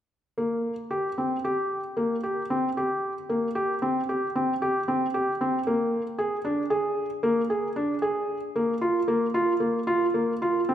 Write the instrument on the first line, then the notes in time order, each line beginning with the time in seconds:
felt piano
0.38 A#3
0.91 G4
1.18 C4
1.45 G4
1.97 A#3
2.23 G4
2.50 C4
2.77 G4
3.29 A#3
3.55 G4
3.82 C4
4.09 G4
4.36 C4
4.62 G4
4.88 C4
5.14 G4
5.41 C4
5.67 A#3
6.18 G#4
6.45 D4
6.70 G#4
7.23 A#3
7.50 G#4
7.76 D4
8.02 G#4
8.56 A#3
8.81 F4
9.08 A#3
9.34 F4
9.60 A#3
9.87 F4
10.14 A#3
10.42 F4
10.69 C4